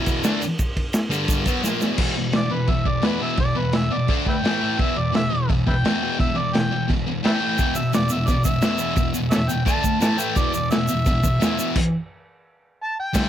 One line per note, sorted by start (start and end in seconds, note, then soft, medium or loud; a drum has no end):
0.00 0.23 E2 loud
0.00 0.24 B2 loud
0.00 0.24 E3 loud
0.06 kick medium
0.06 ride medium
0.06 shaker medium
0.24 0.41 D3 medium
0.24 0.41 A3 loud
0.24 0.42 D4 loud
0.24 snare loud
0.24 ride loud
0.24 shaker loud
0.42 ride medium
0.42 shaker medium
0.59 kick loud
0.59 ride loud
0.59 shaker medium
0.77 kick medium
0.77 ride medium
0.93 snare loud
0.93 ride loud
0.93 shaker medium
1.10 1.45 G2 medium
1.10 1.45 D3 medium
1.10 1.46 G3 medium
1.10 ride medium
1.10 shaker medium
1.28 kick loud
1.28 ride loud
1.28 shaker loud
1.46 1.63 B2 medium
1.46 1.63 F#3 medium
1.46 1.64 B3 loud
1.46 kick medium
1.46 ride medium
1.46 shaker medium
1.64 1.81 A#2 medium
1.64 1.81 F3 loud
1.64 1.81 A#3 loud
1.64 snare medium
1.64 shaker loud
1.81 1.97 E2 medium
1.81 1.98 B2 medium
1.81 1.98 E3 loud
1.81 snare medium
1.81 shaker medium
1.98 2.15 E2 medium
1.98 2.15 B2 loud
1.98 2.16 E3 loud
1.98 kick loud
1.98 crash loud
1.98 crash medium
2.17 2.31 E2 medium
2.17 2.32 B2 medium
2.33 2.49 E2 medium
2.33 2.49 B2 loud
2.33 2.54 D5 loud
2.33 snare loud
2.33 crash medium
2.50 2.66 E2 medium
2.50 2.67 B2 medium
2.50 2.71 B4 medium
2.67 2.84 E2 medium
2.67 2.84 B2 loud
2.67 2.89 E5 medium
2.67 kick loud
2.67 crash medium
2.85 3.01 E2 medium
2.85 3.02 B2 medium
2.85 3.06 D5 medium
2.85 kick medium
3.02 3.19 E2 medium
3.02 3.20 B2 medium
3.02 3.20 E3 medium
3.02 3.21 B4 medium
3.02 snare loud
3.02 crash medium
3.20 3.37 E2 medium
3.20 3.38 B2 medium
3.20 3.38 E3 loud
3.20 3.39 E5 medium
3.37 3.54 E2 medium
3.37 3.55 B2 loud
3.37 3.60 D5 loud
3.37 kick loud
3.37 crash medium
3.55 3.72 E2 medium
3.55 3.72 B2 medium
3.55 3.78 B4 loud
3.72 3.89 E2 medium
3.72 3.89 B2 medium
3.72 3.95 E5 loud
3.72 snare loud
3.72 crash medium
3.91 4.07 E2 medium
3.91 4.07 B2 medium
3.91 4.09 D5 loud
4.08 4.25 D3 medium
4.08 4.25 A3 loud
4.08 4.26 D4 loud
4.08 kick loud
4.08 crash medium
4.26 4.42 D3 medium
4.26 4.42 A3 loud
4.26 4.37 B4 medium
4.26 4.36 E5 medium
4.26 4.82 G5 loud
4.26 kick medium
4.43 4.60 A2 medium
4.43 4.60 E3 loud
4.43 4.61 A3 loud
4.43 snare loud
4.43 crash medium
4.61 4.78 A2 loud
4.61 4.78 E3 loud
4.61 4.78 A3 loud
4.78 4.95 E2 medium
4.78 4.95 B2 medium
4.78 4.96 E3 loud
4.78 4.99 E5 medium
4.78 kick loud
4.78 crash medium
4.96 5.11 E2 medium
4.96 5.12 B2 medium
4.96 5.14 D5 medium
5.13 5.29 E2 medium
5.13 5.29 B2 loud
5.13 5.49 E5 loud
5.13 snare loud
5.13 crash medium
5.31 5.47 E2 medium
5.31 5.47 B2 medium
5.49 5.64 E2 medium
5.49 5.65 B2 medium
5.49 kick loud
5.49 crash medium
5.67 5.82 E2 medium
5.67 5.82 B2 medium
5.67 5.76 B4 medium
5.67 5.74 E5 medium
5.67 6.18 G5 loud
5.67 kick medium
5.84 6.00 E2 medium
5.84 6.01 B2 medium
5.84 6.01 E3 loud
5.84 snare loud
5.84 crash medium
6.01 6.17 E2 medium
6.01 6.17 B2 medium
6.01 6.18 E3 loud
6.19 6.34 E2 medium
6.19 6.34 B2 medium
6.19 6.39 E5 loud
6.19 kick loud
6.19 crash medium
6.35 6.51 E2 medium
6.35 6.51 B2 medium
6.35 6.56 D5 loud
6.53 6.69 E2 medium
6.53 6.69 B2 loud
6.53 6.88 G5 loud
6.53 snare loud
6.53 crash medium
6.71 6.87 E2 medium
6.71 6.87 B2 medium
6.88 7.04 E2 medium
6.88 7.04 B2 medium
6.88 kick loud
6.88 crash medium
7.07 7.22 E2 medium
7.07 7.22 B2 medium
7.23 7.39 A2 medium
7.23 7.40 E3 medium
7.23 7.40 A3 loud
7.23 7.32 B4 medium
7.23 7.32 E5 medium
7.23 7.78 G5 loud
7.23 snare loud
7.23 crash medium
7.41 7.57 A2 medium
7.41 7.57 E3 medium
7.41 7.58 A3 loud
7.58 7.74 E2 medium
7.58 7.75 B2 medium
7.58 7.75 E3 loud
7.58 kick loud
7.58 crash medium
7.58 shaker medium
7.75 7.91 E2 medium
7.75 7.91 B2 medium
7.75 7.93 E5 loud
7.75 shaker medium
7.93 8.09 E2 medium
7.93 8.09 B2 medium
7.93 8.13 D5 loud
7.93 snare loud
7.93 crash medium
7.93 shaker medium
8.09 8.25 E2 medium
8.09 8.26 B2 medium
8.09 8.29 E5 loud
8.09 shaker medium
8.27 8.43 E2 medium
8.27 8.43 B2 medium
8.27 8.44 D5 loud
8.27 kick loud
8.27 crash medium
8.27 shaker medium
8.44 8.61 E2 medium
8.44 8.61 B2 medium
8.44 9.12 E5 loud
8.44 kick medium
8.44 shaker loud
8.62 8.78 E2 medium
8.62 8.79 B2 medium
8.62 8.79 E3 loud
8.62 snare loud
8.62 crash medium
8.62 shaker medium
8.78 8.96 E2 medium
8.78 8.96 B2 medium
8.78 8.97 E3 loud
8.78 shaker loud
8.96 9.13 E2 medium
8.96 9.13 B2 loud
8.96 kick loud
8.96 crash medium
8.96 shaker medium
9.14 9.30 E2 medium
9.14 9.30 B2 medium
9.14 shaker loud
9.31 9.48 E2 medium
9.31 9.48 B2 medium
9.31 9.39 A4 medium
9.31 9.40 C#5 medium
9.31 9.51 E5 loud
9.31 snare loud
9.31 crash medium
9.31 shaker medium
9.49 9.65 E2 medium
9.49 9.65 B2 medium
9.49 9.65 G5 loud
9.49 shaker loud
9.65 9.81 D3 medium
9.65 9.82 A3 loud
9.65 9.83 D4 loud
9.65 10.00 A5 loud
9.65 kick loud
9.65 crash medium
9.65 shaker medium
9.83 9.99 D3 medium
9.83 9.99 A3 medium
9.83 kick medium
9.83 shaker loud
10.00 10.16 A2 medium
10.00 10.18 E3 loud
10.00 10.18 A3 loud
10.00 10.21 A5 loud
10.00 snare loud
10.00 crash medium
10.00 shaker medium
10.18 10.35 A2 medium
10.18 10.35 E3 medium
10.18 10.35 A3 loud
10.18 10.39 G5 loud
10.18 shaker loud
10.36 10.52 E2 medium
10.36 10.53 B2 loud
10.36 10.53 E3 loud
10.36 10.54 D5 loud
10.36 kick loud
10.36 crash medium
10.36 shaker medium
10.53 10.69 E2 medium
10.53 10.69 B2 medium
10.53 10.70 D5 loud
10.53 shaker medium
10.71 10.87 E2 medium
10.71 10.87 B2 medium
10.71 11.72 E5 loud
10.71 snare loud
10.71 crash medium
10.71 shaker medium
10.88 11.04 E2 medium
10.88 11.04 B2 medium
10.88 shaker loud
11.06 11.21 E2 medium
11.06 11.22 B2 loud
11.06 kick loud
11.06 crash medium
11.06 shaker medium
11.23 11.39 E2 medium
11.23 11.39 B2 medium
11.23 kick medium
11.23 shaker loud
11.40 11.57 E2 medium
11.40 11.57 B2 medium
11.40 11.57 E3 medium
11.40 snare loud
11.40 crash medium
11.40 shaker medium
11.58 11.74 E2 medium
11.58 11.75 B2 loud
11.58 11.75 E3 loud
11.58 shaker loud
11.76 kick loud
11.76 crash loud
12.83 12.97 A5 loud
13.00 13.29 G5 loud
13.13 13.29 G2 loud
13.13 13.29 D3 loud
13.13 13.29 G3 loud
13.13 kick loud
13.13 snare loud
13.13 crash loud
13.13 crash medium
13.13 shaker medium